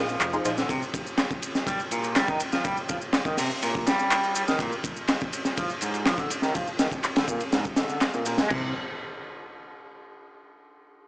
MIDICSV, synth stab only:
0, 0, Header, 1, 2, 480
1, 0, Start_track
1, 0, Tempo, 487805
1, 687, Time_signature, 4, 2, 24, 8
1, 10902, End_track
2, 0, Start_track
2, 0, Title_t, "Synth stab"
2, 0, Program_c, 0, 62
2, 0, Note_on_c, 0, 63, 91
2, 0, Note_on_c, 0, 68, 86
2, 0, Note_on_c, 0, 70, 100
2, 101, Note_off_c, 0, 68, 0
2, 101, Note_off_c, 0, 70, 0
2, 102, Note_off_c, 0, 63, 0
2, 328, Note_on_c, 0, 68, 94
2, 329, Note_on_c, 0, 63, 97
2, 330, Note_on_c, 0, 72, 109
2, 429, Note_off_c, 0, 63, 0
2, 429, Note_off_c, 0, 68, 0
2, 430, Note_off_c, 0, 72, 0
2, 445, Note_on_c, 0, 68, 83
2, 445, Note_on_c, 0, 72, 98
2, 446, Note_on_c, 0, 63, 87
2, 579, Note_off_c, 0, 68, 0
2, 580, Note_off_c, 0, 63, 0
2, 580, Note_off_c, 0, 72, 0
2, 10902, End_track
0, 0, End_of_file